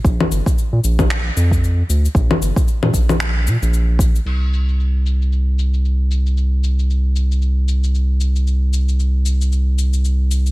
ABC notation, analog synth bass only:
X:1
M:4/4
L:1/16
Q:"Swing 16ths" 1/4=114
K:Bbmix
V:1 name="Analog synth bass" clef=bass
B,,, z G,,, z2 B,, B,,,3 z F,,3 z D,, z | B,,, z G,,, z2 B,, B,,,4 B,, B,,,4 z | C,,16- | C,,16- |
C,,16 |]